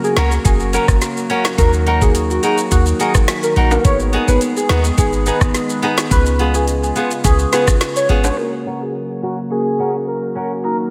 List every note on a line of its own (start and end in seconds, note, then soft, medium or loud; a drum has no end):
0.00 1.54 C#3 medium
0.00 3.81 F#3 medium
0.00 3.81 A#3 medium
0.00 3.81 F#4 medium
0.00 0.15 G#4 medium
0.04 maracas medium
0.16 0.38 C#2 medium
0.16 0.31 C#4 medium
0.16 0.32 F#4 medium
0.16 0.30 A#4 medium
0.16 0.32 A#4 loud
0.16 snare loud
0.16 closed hi-hat medium
0.16 maracas medium
0.32 maracas medium
0.45 0.78 F#1 loud
0.45 0.85 A#3 medium
0.45 0.85 C#4 medium
0.45 0.85 F#4 medium
0.45 0.58 G#4 medium
0.45 0.85 A#4 loud
0.45 kick loud
0.45 closed hi-hat medium
0.45 maracas medium
0.60 maracas medium
0.73 0.88 C#4 medium
0.73 0.88 F#4 medium
0.73 0.86 A#4 medium
0.73 0.87 A#4 loud
0.73 closed hi-hat medium
0.73 maracas medium
0.88 0.98 F#1 medium
0.88 1.01 A#3 medium
0.88 1.01 C#4 medium
0.88 1.01 F#4 medium
0.88 1.01 A#4 medium
0.88 muted nylon-string guitar stroke soft
0.88 kick loud
0.88 cross-stick loud
0.88 maracas medium
1.02 snare medium
1.02 closed hi-hat medium
1.02 maracas medium
1.17 maracas medium
1.30 1.44 A#3 medium
1.30 1.45 C#4 loud
1.30 1.44 C#4 medium
1.30 1.44 F#4 medium
1.30 1.45 F#4 loud
1.30 1.44 A#4 medium
1.30 1.45 A#4 loud
1.30 closed hi-hat soft
1.45 snare loud
1.45 maracas medium
1.58 2.39 D#2 loud
1.58 6.07 D#3 medium
1.58 1.72 A#3 loud
1.58 1.72 D#4 medium
1.58 1.72 F#4 medium
1.58 1.71 A#4 loud
1.58 1.73 A#4 loud
1.58 kick loud
1.58 closed hi-hat medium
1.58 maracas medium
1.73 maracas medium
1.86 2.01 D#4 medium
1.86 2.02 F#4 medium
1.86 2.02 A#4 loud
1.86 closed hi-hat soft
2.01 2.14 A#3 medium
2.01 2.14 D#4 medium
2.01 2.14 F#4 medium
2.01 2.13 G#4 medium
2.01 2.14 A#4 medium
2.01 kick medium
2.01 maracas medium
2.15 closed hi-hat medium
2.15 maracas medium
2.30 2.42 F#4 medium
2.30 maracas medium
2.43 2.58 D#4 medium
2.43 2.58 F#4 medium
2.43 2.56 G#4 medium
2.43 2.59 A#4 medium
2.43 closed hi-hat medium
2.43 maracas medium
2.58 maracas medium
2.71 2.93 D#2 loud
2.71 3.11 A#3 medium
2.71 3.11 D#4 medium
2.71 2.85 F#4 medium
2.71 3.11 F#4 medium
2.71 3.11 A#4 loud
2.71 kick medium
2.71 closed hi-hat medium
2.71 maracas medium
2.86 maracas medium
2.99 3.14 D#4 medium
2.99 3.14 F#4 medium
2.99 3.13 G#4 medium
2.99 3.13 A#4 medium
2.99 closed hi-hat medium
2.99 maracas medium
3.14 3.27 A#3 medium
3.14 3.27 D#4 medium
3.14 3.27 F#4 medium
3.14 3.27 A#4 medium
3.14 muted nylon-string guitar stroke medium
3.14 kick loud
3.14 cross-stick loud
3.14 maracas medium
3.28 snare loud
3.28 closed hi-hat medium
3.28 maracas medium
3.43 3.55 A#4 medium
3.43 maracas medium
3.56 3.78 A#1 medium
3.56 3.70 A#3 medium
3.56 3.71 D#4 medium
3.56 3.71 F#4 medium
3.56 3.71 A#4 medium
3.56 3.72 A#4 medium
3.56 closed hi-hat soft
3.71 3.83 A#4 medium
3.71 high timbale medium
3.71 maracas medium
3.84 4.17 G#1 loud
3.84 8.34 G#3 medium
3.84 3.99 B3 medium
3.84 8.34 B3 medium
3.84 3.99 D#4 medium
3.84 3.99 G#4 medium
3.84 6.09 G#4 medium
3.84 3.99 B4 loud
3.84 3.98 C#5 loud
3.84 kick loud
3.84 closed hi-hat medium
3.84 maracas medium
4.00 maracas medium
4.13 4.28 B3 medium
4.13 4.28 D#4 medium
4.13 4.28 G#4 loud
4.13 closed hi-hat soft
4.28 4.38 G#1 medium
4.28 4.40 B3 medium
4.28 4.40 D#4 medium
4.28 4.41 G#4 medium
4.28 4.40 B4 medium
4.28 4.41 B4 medium
4.28 maracas medium
4.41 closed hi-hat medium
4.41 maracas medium
4.56 4.68 G#4 medium
4.56 maracas medium
4.69 4.91 D#2 loud
4.69 4.84 B3 medium
4.69 4.85 D#4 medium
4.69 4.85 G#4 loud
4.69 4.83 B4 medium
4.69 snare loud
4.69 closed hi-hat medium
4.69 maracas medium
4.84 maracas medium
4.98 5.31 G#1 loud
4.98 5.37 B3 medium
4.98 5.38 D#4 medium
4.98 5.38 G#4 medium
4.98 5.11 G#4 medium
4.98 5.38 B4 loud
4.98 kick loud
4.98 closed hi-hat medium
4.98 maracas medium
5.13 maracas medium
5.26 5.41 B3 medium
5.26 5.41 D#4 medium
5.26 5.40 G#4 loud
5.26 5.39 B4 medium
5.26 closed hi-hat medium
5.26 maracas medium
5.41 5.51 G#1 medium
5.41 5.54 B3 medium
5.41 5.54 D#4 medium
5.41 5.54 G#4 medium
5.41 5.54 B4 medium
5.41 muted nylon-string guitar stroke soft
5.41 kick loud
5.41 cross-stick loud
5.41 maracas medium
5.54 snare medium
5.54 closed hi-hat medium
5.54 maracas medium
5.70 maracas medium
5.82 5.97 B3 loud
5.82 5.97 B3 medium
5.82 5.97 D#4 medium
5.82 5.98 D#4 loud
5.82 5.97 G#4 medium
5.82 5.98 G#4 loud
5.82 5.97 B4 medium
5.82 closed hi-hat soft
5.98 snare loud
5.98 maracas medium
6.11 6.92 C#2 loud
6.11 8.35 C#3 medium
6.11 6.25 C#4 medium
6.11 6.25 F4 medium
6.11 8.35 F4 medium
6.11 6.25 G#4 medium
6.11 6.24 B4 loud
6.11 6.25 B4 loud
6.11 kick loud
6.11 closed hi-hat medium
6.11 maracas medium
6.26 maracas medium
6.39 6.54 B3 medium
6.39 6.54 F4 medium
6.39 6.55 G#4 medium
6.39 closed hi-hat soft
6.54 6.67 C#4 medium
6.54 6.67 F4 medium
6.54 6.66 G#4 medium
6.54 6.67 G#4 medium
6.54 6.67 B4 medium
6.54 maracas medium
6.68 closed hi-hat medium
6.68 maracas medium
6.83 6.94 G#4 medium
6.83 maracas medium
6.96 7.11 B3 medium
6.96 7.11 F4 medium
6.96 7.11 G#4 loud
6.96 7.09 B4 medium
6.96 closed hi-hat medium
6.96 maracas medium
7.11 maracas medium
7.24 7.46 C#2 loud
7.24 7.64 C#4 medium
7.24 7.64 F4 medium
7.24 7.64 G#4 medium
7.24 7.38 G#4 loud
7.24 7.64 B4 loud
7.24 kick loud
7.24 closed hi-hat medium
7.24 maracas medium
7.39 maracas medium
7.52 7.67 B3 medium
7.52 7.67 F4 medium
7.52 7.66 G#4 medium
7.52 7.66 B4 medium
7.52 snare medium
7.52 closed hi-hat medium
7.52 maracas medium
7.67 7.80 C#4 medium
7.67 7.80 F4 medium
7.67 7.80 G#4 medium
7.67 7.80 B4 medium
7.67 muted nylon-string guitar stroke medium
7.67 kick loud
7.67 cross-stick loud
7.67 maracas medium
7.81 snare loud
7.81 closed hi-hat medium
7.81 maracas medium
7.96 8.08 C#5 medium
7.96 maracas medium
8.09 8.31 G#1 medium
8.09 8.24 B3 medium
8.09 8.23 C#4 medium
8.09 8.23 F4 medium
8.09 8.24 F4 medium
8.09 8.23 G#4 medium
8.09 8.25 G#4 medium
8.09 8.24 B4 medium
8.09 closed hi-hat soft
8.24 8.36 C#5 medium
8.24 high timbale medium
8.24 maracas medium
8.37 10.62 C#3 medium
8.37 10.90 F#3 medium
8.37 8.52 A#3 medium
8.37 10.90 A#3 medium
8.37 8.52 C#4 medium
8.37 10.90 F#4 medium
8.37 8.52 F#4 medium
8.37 8.51 A#4 loud
8.37 8.52 A#4 loud
8.65 8.80 C#4 medium
8.65 8.81 F#4 medium
8.65 8.81 A#4 medium
8.80 8.93 A#3 medium
8.80 8.93 C#4 medium
8.80 8.93 F#4 medium
8.80 8.93 G#4 medium
8.80 8.94 A#4 medium
9.22 9.37 C#4 medium
9.22 9.36 F#4 medium
9.22 9.37 F#4 medium
9.22 9.38 A#4 medium
9.50 9.90 A#3 medium
9.50 9.90 C#4 medium
9.50 9.91 F#4 medium
9.50 9.91 G#4 loud
9.50 9.91 A#4 medium
9.79 9.94 C#4 medium
9.79 9.94 F#4 medium
9.79 9.94 A#4 medium
9.94 10.06 A#3 medium
9.94 10.07 C#4 medium
9.94 10.07 F#4 medium
9.94 10.07 A#4 medium
10.07 10.48 A#4 medium
10.35 10.50 A#3 medium
10.35 10.50 C#4 medium
10.35 10.50 F#4 medium
10.35 10.51 F#4 medium
10.35 10.50 A#4 medium
10.35 10.51 A#4 medium
10.64 10.90 D#3 medium
10.64 10.78 A#3 medium
10.64 10.78 D#4 medium
10.64 10.78 F#4 medium
10.64 10.77 A#4 medium
10.64 10.78 A#4 loud